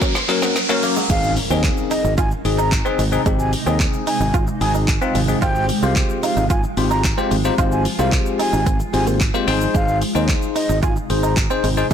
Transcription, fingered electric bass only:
1.10 1.37 G#1 loud
1.50 1.68 D#2 medium
2.04 2.31 G#1 medium
2.45 2.81 G#1 medium
2.99 3.17 G#1 medium
3.26 3.53 G#1 loud
3.66 3.84 D#2 medium
4.20 4.47 G#1 medium
4.61 4.97 G#1 medium
5.15 5.33 G#1 medium
5.42 5.69 G#1 loud
5.83 6.01 C2 medium
6.37 6.64 G#1 medium
6.77 7.13 G#1 medium
7.31 7.49 G#1 medium
7.58 7.85 G#1 loud
7.99 8.17 C2 medium
8.53 8.80 G#1 loud
8.94 9.30 G#1 medium
9.48 9.66 G#1 medium
9.75 10.02 G#1 medium
10.15 10.33 D#2 medium
10.69 10.96 G#1 medium
11.10 11.46 G#1 medium
11.64 11.82 G#1 medium

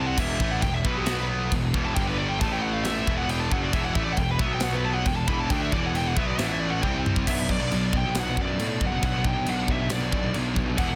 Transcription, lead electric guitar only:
0.07 0.19 F#5 medium
0.19 0.50 E5 loud
0.51 0.62 F#5 medium
0.62 0.74 G5 loud
0.74 0.85 E5 loud
0.85 0.97 B4 loud
0.96 1.05 G4 medium
1.05 1.18 F#4 medium
1.17 1.24 B4 medium
1.85 1.95 A5 medium
1.95 2.07 G5 medium
2.07 2.18 B4 medium
2.18 2.29 D5 loud
2.29 2.40 G5 medium
2.40 2.52 A5 loud
2.53 2.62 G5 medium
2.62 2.73 F#5 loud
2.73 2.84 F5 medium
2.84 3.16 E5 medium
3.18 3.30 F#5 medium
3.30 3.41 G5 loud
3.40 3.51 A5 loud
3.52 3.63 F#5 loud
3.62 3.74 D5 medium
3.73 3.84 E5 loud
3.85 3.94 F#5 loud
3.95 4.03 E5 medium
4.04 4.11 D5 medium
4.12 4.18 F#5 medium
4.19 4.29 G5 loud
4.31 4.41 B4 medium
4.41 4.53 E5 loud
4.53 4.63 G5 loud
4.63 4.74 F#5 loud
4.73 4.80 B4 loud
4.85 4.94 A5 loud
4.94 5.06 F#5 medium
5.07 5.16 G5 medium
5.16 5.28 A5 loud
5.27 5.39 B5 loud
5.40 5.50 A5 medium
5.50 5.61 G5 medium
5.62 5.72 E5 medium
5.73 5.84 D5 loud
5.86 5.96 F#5 medium
5.97 6.07 G5 loud
6.07 6.17 F#5 medium
6.17 6.27 E5 loud
6.27 6.38 D5 loud
6.38 6.46 E5 medium
6.45 6.53 F#5 loud
6.52 6.60 E5 medium
6.60 6.71 D5 loud
6.70 6.82 F#5 medium
6.82 6.95 G5 loud
7.28 7.50 E5 loud
7.51 7.96 D5 loud
7.97 8.18 G5 loud
8.19 8.40 F#5 loud
8.41 8.85 D5 loud
8.86 9.04 F#5 loud
9.05 9.27 F#5 loud
9.27 9.49 G5 loud
9.50 9.71 F#5 loud
9.71 9.92 E5 loud
9.93 10.33 D5 medium
10.78 10.95 F#5 loud

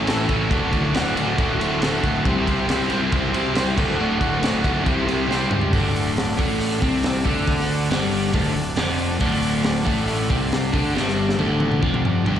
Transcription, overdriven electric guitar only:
0.06 0.49 A2 medium
0.06 0.49 E3 loud
0.06 0.30 A3 medium
0.06 0.29 C#4 medium
0.06 0.28 E4 loud
0.06 0.26 A4 loud
0.27 0.50 C#4 medium
0.27 0.50 E4 medium
0.27 0.49 A4 medium
0.32 0.51 A3 medium
0.50 0.94 D2 loud
0.50 0.91 A2 loud
0.50 0.76 D3 loud
0.50 0.73 A3 loud
0.54 0.72 F#4 loud
0.73 0.94 A3 medium
0.73 0.95 F#4 medium
0.77 0.93 D3 medium
0.93 1.17 A2 medium
0.93 1.16 D3 medium
0.93 1.16 A3 medium
0.93 1.14 F#4 medium
1.15 1.61 D2 medium
1.15 1.35 A2 medium
1.15 1.36 D3 medium
1.15 1.38 A3 loud
1.15 1.39 F#4 loud
1.36 1.81 A2 medium
1.36 1.63 D3 medium
1.36 1.61 A3 medium
1.40 1.58 F#4 medium
1.59 1.83 A3 medium
1.59 1.84 F#4 medium
1.64 1.82 D3 medium
1.82 2.24 D2 medium
1.82 2.24 A2 medium
1.82 2.06 D3 loud
1.82 2.05 A3 medium
1.86 2.02 F#4 loud
2.04 2.26 D3 medium
2.04 2.25 A3 medium
2.04 2.24 F#4 medium
2.25 2.69 C3 loud
2.25 2.69 G3 loud
2.25 2.49 C4 loud
2.25 2.48 E4 loud
2.25 2.46 G4 loud
2.29 2.45 C5 loud
2.46 2.68 C4 medium
2.46 2.69 E4 medium
2.46 2.70 G4 medium
2.46 2.71 C5 medium
2.69 2.91 C4 medium
2.69 2.90 E4 medium
2.69 2.90 G4 medium
2.69 2.89 C5 medium
2.90 3.36 G3 medium
2.90 3.11 C4 medium
2.90 3.13 E4 medium
2.90 3.14 G4 medium
2.90 3.15 C5 medium
2.94 3.36 C3 medium
3.12 3.36 C4 medium
3.12 3.34 E4 medium
3.12 3.33 G4 medium
3.16 3.32 C5 medium
3.33 3.55 C4 medium
3.33 3.56 E4 medium
3.33 3.56 G4 medium
3.33 3.57 C5 medium
3.54 3.76 C3 medium
3.54 3.76 G3 medium
3.54 3.77 C4 medium
3.54 3.76 E4 loud
3.54 3.77 G4 loud
3.54 3.75 C5 loud
3.76 3.96 D2 medium
3.76 3.97 A2 medium
3.76 3.98 D3 medium
3.76 3.99 A3 medium
3.76 4.00 F#4 loud
3.97 4.42 D2 medium
3.97 4.38 A2 loud
3.97 4.22 D3 loud
3.97 4.20 A3 loud
3.97 4.18 F#4 loud
4.20 4.40 D3 medium
4.20 4.42 A3 medium
4.20 4.43 F#4 medium
4.40 4.63 A2 medium
4.40 4.62 D3 medium
4.40 4.62 A3 medium
4.44 4.61 F#4 medium
4.62 4.82 D2 medium
4.62 4.83 A2 medium
4.62 4.84 D3 loud
4.62 4.84 A3 medium
4.62 4.84 F#4 medium
4.83 5.26 C3 medium
4.83 5.27 G3 loud
4.83 5.09 C4 loud
4.83 5.08 E4 loud
4.83 5.06 G4 loud
4.83 5.04 C5 loud
5.06 5.29 E4 medium
5.06 5.30 G4 medium
5.06 5.30 C5 medium
5.10 5.28 C4 medium
5.28 5.71 C3 medium
5.28 5.71 G3 loud
5.28 5.53 C4 loud
5.28 5.52 E4 medium
5.28 5.51 G4 loud
5.28 5.50 C5 loud
5.51 5.73 C4 medium
5.51 5.73 E4 medium
5.51 5.72 G4 medium
5.51 5.72 C5 medium
5.73 6.37 D2 loud
5.73 6.38 D3 loud
6.37 6.81 A2 medium
6.37 6.82 A3 loud
6.81 7.25 C3 medium
6.81 7.25 C4 loud
7.25 7.90 D3 medium
7.25 7.90 D4 loud
7.90 8.33 G2 medium
7.90 8.34 G3 loud
8.34 8.55 D2 loud
8.34 8.56 D3 loud
8.56 8.74 D2 medium
8.76 9.19 F2 medium
8.76 9.20 F3 medium
9.20 9.84 D2 loud
9.20 9.85 D3 loud
9.85 10.29 A2 loud
9.85 10.29 A3 loud
10.30 10.73 C3 loud
10.30 10.74 C4 loud
10.72 10.94 D3 medium
10.72 10.95 D4 loud
10.94 11.37 G2 medium
10.94 11.38 G3 loud
11.38 11.81 D2 medium
11.38 11.82 D3 loud
11.82 12.25 F2 loud
11.82 12.26 F3 loud
12.25 12.40 G2 medium
12.25 12.40 G3 loud

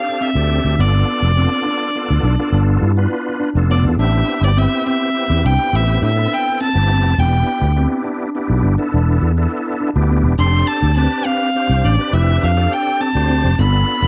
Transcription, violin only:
0.00 0.23 F5 medium
0.22 0.81 E5 medium
0.80 2.54 D5 medium
3.71 3.84 D5 medium
4.00 4.45 E5 medium
4.44 4.60 D5 medium
4.58 4.87 E5 medium
4.88 5.48 E5 medium
5.46 5.77 G5 medium
5.76 6.03 E5 medium
6.04 6.35 E5 medium
6.34 6.61 G5 medium
6.62 7.21 A5 medium
7.20 7.78 G5 medium
10.39 10.68 C6 loud
10.67 10.95 A5 medium
10.96 11.27 A5 medium
11.25 11.87 F5 medium
11.85 12.15 D5 medium
12.14 12.45 E5 medium
12.43 12.74 F5 medium
12.73 13.02 G5 medium
13.01 13.61 A5 medium
13.60 14.07 B5 medium

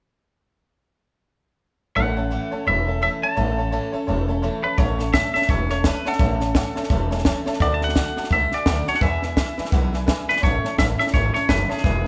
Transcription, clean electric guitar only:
1.96 2.67 F#5 medium
2.68 3.02 E5 medium
3.03 3.08 E5 medium
3.23 3.90 A5 medium
4.64 4.78 B4 medium
4.78 5.15 C#5 medium
5.14 5.33 E5 loud
5.34 5.49 E5 loud
5.50 5.70 C#5 medium
5.71 5.86 C#5 medium
5.86 6.07 B4 loud
6.08 7.09 A4 medium
7.62 7.73 D5 loud
7.74 7.82 A5 medium
7.84 8.32 F#5 loud
8.33 8.54 E5 medium
8.54 8.88 D5 loud
8.89 8.97 C#5 medium
8.96 9.02 F#5 medium
9.02 10.29 E5 loud
10.29 10.43 B4 medium
10.44 10.76 C#5 loud
10.79 10.84 E5 medium
10.99 11.04 E5 medium
11.14 11.33 C#5 medium
11.34 11.49 C#5 medium
11.49 11.70 B4 medium
11.70 12.07 G#4 medium

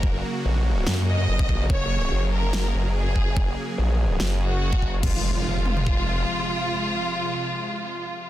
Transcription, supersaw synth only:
0.00 4.99 C#3 medium
0.00 4.99 F#3 medium
0.00 4.99 A#3 medium
0.00 1.67 F#4 medium
1.70 5.00 G#4 medium
5.03 8.30 C3 medium
5.03 8.30 F3 medium
5.03 8.30 G#3 medium
5.03 8.30 F4 medium

